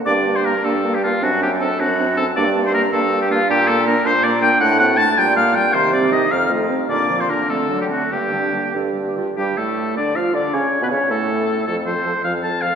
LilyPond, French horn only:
\new Staff \with { instrumentName = "French horn" } { \time 6/8 \key g \minor \tempo 4. = 105 bes8 bes8 bes8 bes8 bes8 bes8 | c'8 c'8 c'8 c'8 c'8 c'8 | bes8 bes8 bes8 bes8 bes8 bes8 | bes8 bes8 bes8 bes8 bes8 bes8 |
a8 c'8 a8 g8 bes8 g8 | ees8 g8 ees8 c'8 a8 c'8 | d8 f8 d8 a8 fis8 a8 | d8 g8 d8 g8 d8 g8 |
\key d \minor g8 a4 d'8 f'8 d'8 | cis'8. b16 cis'8 a4. | f8 f8 f8 f8 f8 f8 | }